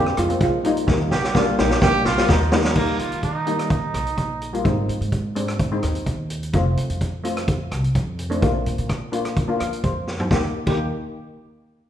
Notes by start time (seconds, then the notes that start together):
Already playing: F2 A#3 D4 F4 G4
0.06 cross-stick
0.17 F2 G#3 F4, cross-stick, closed hi-hat
0.28 A#3 C4 F4, closed hi-hat
0.41 A#1 G#3 F4, kick, closed hi-hat
0.64 G3 A#3 D#4 F4, closed hi-hat
0.77 closed hi-hat
0.87 D#2 G3 A#3 D#4, kick, snare
1.11 A#1 G4, snare
1.24 snare
1.34 G3 A#3 D4 F4, kick, snare
1.58 A#1 G3 A#3 D#4 G4, snare
1.71 snare
1.81 G3 A#3 D4 G4, kick, snare
2.05 A#1 F4, snare
2.18 G3 A#3 F4, snare
2.29 D#2 D#4, kick, snare
2.52 G3 A#3 D#4, snare
2.64 snare
2.76 D#2 G3 A#3 D#4, kick, crash
2.99 D#3 F4, closed hi-hat
3.12 D#3, closed hi-hat
3.23 D#4, kick, closed hi-hat
3.47 G3 A#3 D#4, closed hi-hat
3.59 cross-stick, closed hi-hat
3.70 D#4, kick, closed hi-hat
3.94 A#1, cross-stick, closed hi-hat
4.07 closed hi-hat
4.17 A#1, kick, closed hi-hat
4.42 closed hi-hat
4.53 G3 A#3 F4, closed hi-hat
4.64 G#1 G#3 C4 D#4, kick, closed hi-hat
4.89 G#2, closed hi-hat
5.01 G#2, closed hi-hat
5.12 kick, closed hi-hat
5.36 G#3 C4 D4, closed hi-hat
5.48 cross-stick, closed hi-hat
5.59 kick, closed hi-hat
5.72 G#3 C4 D#4
5.83 D#2, cross-stick, closed hi-hat
5.95 closed hi-hat
6.06 D#2, kick, closed hi-hat
6.30 closed hi-hat
6.43 closed hi-hat
6.53 F1 A3 C4 F4, kick, closed hi-hat
6.77 F2, closed hi-hat
6.90 F2, closed hi-hat
7.01 kick, closed hi-hat
7.24 A3 C4 F4, closed hi-hat
7.37 cross-stick, closed hi-hat
7.48 kick, closed hi-hat
7.72 C2, cross-stick, closed hi-hat
7.84 closed hi-hat
7.95 F2, kick, closed hi-hat
8.19 closed hi-hat
8.30 A3 C4 D4, closed hi-hat
8.42 A#1 A#3 D4 F4, kick, closed hi-hat
8.66 A#2, closed hi-hat
8.78 A#2, closed hi-hat
8.89 kick, cross-stick, closed hi-hat
9.12 A#3 D4 F4, closed hi-hat
9.25 cross-stick, closed hi-hat
9.36 kick, closed hi-hat
9.48 A#3 D4 F4
9.59 F2 F5, cross-stick, closed hi-hat
9.73 closed hi-hat
9.84 F2 C5, kick, closed hi-hat
10.07 snare
10.20 floor tom
10.31 D#2 A#3 D#4 G4, kick, snare
10.66 D#2 A#3 D#4 G4, kick, crash